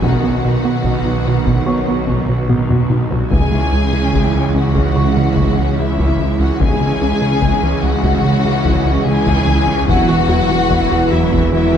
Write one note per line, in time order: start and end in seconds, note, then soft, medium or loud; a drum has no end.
0.02 3.07 B1 medium
0.02 3.33 B1 medium
0.02 3.08 B2 medium
0.02 0.16 B2 medium
0.02 2.95 D#3 medium
0.02 0.22 D#3 medium
0.02 2.95 B3 medium
0.02 0.15 B3 medium
0.02 0.22 D#4 soft
0.02 2.45 F#4 medium
0.02 2.50 F#5 medium
0.02 taiko medium
0.23 0.45 F#3 soft
0.23 0.36 B3 medium
0.23 0.35 F#4 medium
0.23 0.45 F#4 soft
0.43 0.57 B2 medium
0.43 0.65 D#3 soft
0.43 0.65 D#4 soft
0.43 0.56 B4 medium
0.64 0.85 F#3 soft
0.64 0.77 B3 medium
0.64 0.77 F#4 medium
0.64 0.86 F#4 soft
0.84 0.98 B2 medium
0.84 1.05 D#3 soft
0.84 0.97 B3 medium
0.84 1.05 D#4 soft
0.84 taiko medium
1.05 1.18 B2 medium
1.05 1.26 F#3 soft
1.05 1.18 D#4 medium
1.05 1.26 F#4 soft
1.26 1.39 B2 medium
1.26 1.47 D#3 soft
1.26 1.47 D#4 soft
1.26 1.38 B4 medium
1.46 1.59 B2 medium
1.46 1.68 F#3 soft
1.46 1.58 B3 medium
1.46 1.68 F#4 soft
1.46 taiko medium
1.66 1.86 D#3 soft
1.66 1.80 B3 medium
1.66 1.87 D#4 soft
1.66 1.79 F#4 medium
1.66 4.09 C#5 soft
1.66 4.09 C#6 soft
1.87 2.09 F#3 soft
1.87 2.00 B3 medium
1.87 2.00 F#4 medium
1.87 2.09 F#4 soft
2.07 2.21 B2 medium
2.07 2.29 D#3 soft
2.07 2.20 B3 medium
2.07 2.29 D#4 soft
2.07 taiko medium
2.29 2.42 B2 medium
2.29 2.50 F#3 soft
2.29 2.50 F#4 soft
2.29 2.41 B4 medium
2.49 2.69 D#3 soft
2.49 2.62 B3 medium
2.49 2.69 D#4 soft
2.49 2.61 F#4 medium
2.49 taiko mid medium
2.69 2.82 B2 medium
2.69 2.90 F#3 soft
2.69 2.82 B3 medium
2.69 2.91 F#4 soft
2.69 taiko low-mid medium
2.90 3.03 B2 medium
2.90 3.11 D#3 soft
2.90 3.02 D#4 medium
2.90 3.11 D#4 soft
2.90 taiko mid medium
3.11 3.24 B2 medium
3.11 3.32 F#3 soft
3.11 3.32 F#4 soft
3.11 3.23 B4 medium
3.11 taiko low medium
3.30 6.60 C#2 medium
3.30 3.44 C#2 medium
3.30 6.57 C#2 medium
3.30 3.43 C#3 medium
3.30 6.56 C#3 medium
3.30 6.56 E3 medium
3.30 6.56 G#3 medium
3.30 3.51 G#3 soft
3.30 3.51 E4 soft
3.30 4.51 G#4 medium
3.30 4.51 G#5 medium
3.30 taiko medium
3.51 3.65 C#3 medium
3.51 3.73 E3 soft
3.51 3.64 G#3 medium
3.51 3.73 C#4 soft
3.72 3.85 C#2 medium
3.72 3.93 G#3 soft
3.72 3.85 C#4 medium
3.72 3.93 E4 soft
3.93 4.05 C#3 medium
3.93 4.14 E3 soft
3.93 4.05 G#3 medium
3.93 4.14 C#4 soft
4.13 4.26 C#2 medium
4.13 4.26 C#3 medium
4.13 4.33 G#3 soft
4.13 4.33 E4 soft
4.13 taiko medium
4.34 4.47 C#2 medium
4.34 4.46 E3 medium
4.34 4.55 E3 soft
4.34 4.55 C#4 soft
4.54 4.67 C#2 medium
4.54 4.75 G#3 soft
4.54 4.67 C#4 medium
4.54 4.75 E4 soft
4.54 5.76 F#4 medium
4.54 5.78 F#5 medium
4.75 4.88 C#2 medium
4.75 4.87 C#3 medium
4.75 4.96 E3 soft
4.75 4.96 C#4 soft
4.75 taiko medium
4.95 5.08 C#3 medium
4.95 5.15 G#3 soft
4.95 5.08 G#3 medium
4.95 5.15 E4 soft
4.95 7.38 C#6 soft
5.16 5.29 C#3 medium
5.16 5.37 E3 soft
5.16 5.29 G#3 medium
5.16 5.37 C#4 soft
5.36 5.49 C#2 medium
5.36 5.49 C#3 medium
5.36 5.58 G#3 soft
5.36 5.58 E4 soft
5.36 taiko medium
5.57 5.70 C#2 medium
5.57 5.78 E3 soft
5.57 5.70 C#4 medium
5.57 5.78 C#4 soft
5.77 5.91 C#3 medium
5.77 5.90 G#3 medium
5.77 5.98 G#3 soft
5.77 6.39 E4 medium
5.77 5.98 E4 soft
5.77 6.40 E5 medium
5.98 6.11 C#2 medium
5.98 6.11 C#3 medium
5.98 6.20 E3 soft
5.98 6.20 C#4 soft
5.98 taiko medium
6.19 6.31 C#2 medium
6.19 6.32 E3 medium
6.19 6.40 G#3 soft
6.19 6.40 E4 soft
6.39 6.52 C#2 medium
6.39 6.61 E3 soft
6.39 6.52 C#4 medium
6.39 6.61 C#4 soft
6.39 6.60 F#4 medium
6.39 6.61 F#5 medium
6.60 9.90 C#2 medium
6.60 9.85 C#2 medium
6.60 6.73 C#2 medium
6.60 9.85 C#3 medium
6.60 6.73 C#3 medium
6.60 9.72 E3 medium
6.60 6.80 G#3 medium
6.60 9.72 G#3 medium
6.60 6.80 E4 medium
6.60 7.83 G#4 medium
6.60 7.81 G#5 medium
6.60 taiko medium
6.80 6.93 C#3 medium
6.80 7.02 E3 soft
6.80 6.93 G#3 medium
6.80 7.02 C#4 soft
7.01 7.14 C#2 medium
7.01 7.23 G#3 soft
7.01 7.14 C#4 medium
7.01 7.23 E4 soft
7.22 7.34 C#3 medium
7.22 7.43 E3 soft
7.22 7.34 G#3 medium
7.22 7.43 C#4 soft
7.42 7.54 C#2 medium
7.42 7.54 C#3 medium
7.42 7.62 G#3 medium
7.42 7.62 E4 medium
7.42 taiko medium
7.63 7.75 C#2 medium
7.63 7.75 E3 medium
7.63 7.84 E3 soft
7.63 7.84 C#4 soft
7.83 7.96 C#2 medium
7.83 8.05 G#3 soft
7.83 7.96 C#4 medium
7.83 8.05 E4 soft
7.83 9.07 F#4 medium
7.83 9.07 F#5 medium
8.03 8.16 C#2 medium
8.03 8.16 C#3 medium
8.03 8.25 E3 soft
8.03 8.25 C#4 soft
8.03 taiko medium
8.24 8.36 C#3 medium
8.24 8.37 G#3 medium
8.24 8.44 G#3 medium
8.24 8.44 E4 medium
8.45 8.58 C#3 medium
8.45 8.66 E3 medium
8.45 8.57 G#3 medium
8.45 8.66 C#4 medium
8.65 8.78 C#2 medium
8.65 8.78 C#3 medium
8.65 8.86 G#3 medium
8.65 8.86 E4 medium
8.65 taiko medium
8.85 8.98 C#2 medium
8.85 9.07 E3 medium
8.85 8.98 C#4 medium
8.85 9.07 C#4 medium
9.05 9.19 C#3 medium
9.05 9.18 G#3 medium
9.05 9.26 G#3 medium
9.05 9.26 E4 medium
9.05 9.87 G#4 medium
9.05 9.88 G#5 medium
9.26 9.40 C#2 medium
9.26 9.39 C#3 medium
9.26 9.47 E3 medium
9.26 9.47 C#4 medium
9.26 taiko medium
9.46 9.60 C#2 medium
9.46 9.59 E3 medium
9.46 9.68 G#3 medium
9.46 9.68 E4 medium
9.68 9.80 C#2 medium
9.68 9.89 E3 medium
9.68 9.80 C#4 medium
9.68 9.89 C#4 medium
9.87 11.77 E1 medium
9.87 10.01 E2 medium
9.87 11.77 E2 medium
9.87 10.00 E3 medium
9.87 11.77 E3 medium
9.87 10.07 F#3 medium
9.87 11.77 B3 medium
9.87 10.08 E4 medium
9.87 11.10 F#4 loud
9.87 11.10 F#5 loud
9.87 taiko loud
10.08 10.29 E3 medium
10.08 10.21 E3 medium
10.08 10.21 E4 medium
10.08 10.29 F#4 medium
10.29 10.41 E2 medium
10.29 10.50 F#3 medium
10.29 10.50 E4 medium
10.29 10.42 F#4 medium
10.49 10.70 E3 medium
10.49 10.62 E3 medium
10.49 10.62 E4 medium
10.49 10.70 F#4 medium
10.69 10.83 E2 medium
10.69 10.83 E3 medium
10.69 10.89 F#3 medium
10.69 10.89 E4 medium
10.69 taiko medium
10.91 11.04 E2 medium
10.91 11.12 E3 medium
10.91 11.04 B3 medium
10.91 11.12 F#4 medium
11.11 11.25 E2 medium
11.11 11.33 F#3 medium
11.11 11.33 E4 medium
11.11 11.53 E4 medium
11.11 11.24 F#4 medium
11.11 11.53 E5 medium
11.32 11.44 E2 medium
11.32 11.53 E3 medium
11.32 11.44 E3 medium
11.32 11.53 F#4 medium
11.32 taiko medium
11.52 11.65 E3 medium
11.52 11.72 F#3 medium
11.52 11.65 E4 medium
11.52 11.72 E4 medium
11.52 11.77 E4 medium
11.52 11.77 E5 medium
11.73 11.77 E3 medium
11.73 11.77 E4 medium
11.73 11.77 F#4 medium